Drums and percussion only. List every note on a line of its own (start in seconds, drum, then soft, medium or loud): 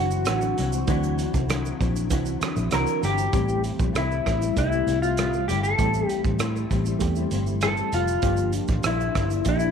0.11 shaker soft
0.25 cross-stick medium
0.25 closed hi-hat medium
0.25 shaker medium
0.27 shaker medium
0.41 shaker soft
0.58 closed hi-hat soft
0.58 shaker soft
0.72 shaker soft
0.72 shaker medium
0.88 kick loud
0.88 closed hi-hat medium
0.88 shaker medium
1.03 shaker soft
1.19 closed hi-hat soft
1.19 shaker soft
1.34 kick medium
1.34 shaker soft
1.49 cross-stick medium
1.49 closed hi-hat medium
1.49 shaker medium
1.65 shaker soft
1.81 kick medium
1.81 closed hi-hat soft
1.81 shaker soft
1.96 shaker soft
1.96 shaker medium
2.10 kick medium
2.10 closed hi-hat medium
2.10 shaker medium
2.26 shaker medium
2.26 shaker soft
2.41 cross-stick medium
2.41 closed hi-hat soft
2.41 shaker soft
2.41 shaker medium
2.56 shaker soft
2.58 shaker soft
2.71 cross-stick medium
2.71 closed hi-hat medium
2.71 shaker medium
2.87 shaker soft
3.03 closed hi-hat soft
3.03 shaker soft
3.18 shaker soft
3.19 shaker soft
3.33 kick loud
3.33 closed hi-hat medium
3.33 shaker medium
3.49 shaker soft
3.64 closed hi-hat soft
3.64 shaker soft
3.80 kick medium
3.80 shaker medium
3.95 cross-stick medium
3.95 closed hi-hat medium
3.95 shaker medium
4.11 shaker soft
4.26 kick medium
4.26 cross-stick medium
4.26 closed hi-hat soft
4.26 shaker soft
4.42 shaker medium
4.57 kick medium
4.57 closed hi-hat medium
4.57 shaker medium
4.72 shaker medium
4.88 closed hi-hat soft
4.88 shaker soft
5.03 shaker soft
5.17 cross-stick medium
5.17 closed hi-hat medium
5.17 shaker medium
5.33 shaker soft
5.49 closed hi-hat medium
5.49 shaker soft
5.64 shaker soft
5.79 kick loud
5.79 closed hi-hat medium
5.79 shaker medium
5.94 shaker soft
6.09 closed hi-hat soft
6.09 shaker soft
6.24 kick medium
6.24 shaker soft
6.39 cross-stick medium
6.39 closed hi-hat medium
6.39 shaker medium
6.56 shaker soft
6.71 kick medium
6.71 closed hi-hat soft
6.71 shaker soft
6.86 shaker medium
7.00 kick medium
7.00 closed hi-hat medium
7.00 shaker medium
7.16 shaker medium
7.31 closed hi-hat soft
7.31 shaker soft
7.47 shaker soft
7.61 cross-stick medium
7.61 closed hi-hat medium
7.61 shaker medium
7.77 shaker soft
7.93 closed hi-hat soft
7.93 shaker medium
8.08 shaker medium
8.22 kick loud
8.22 closed hi-hat medium
8.22 shaker medium
8.24 shaker medium
8.37 shaker soft
8.39 shaker soft
8.53 closed hi-hat soft
8.53 shaker soft
8.54 shaker soft
8.68 kick loud
8.68 shaker soft
8.83 cross-stick loud
8.83 closed hi-hat medium
8.83 shaker medium
9.00 shaker soft
9.15 kick medium
9.15 cross-stick medium
9.15 closed hi-hat soft
9.15 shaker soft
9.30 shaker medium
9.32 shaker soft
9.45 kick medium
9.45 closed hi-hat medium
9.45 shaker medium
9.60 shaker medium
9.60 shaker soft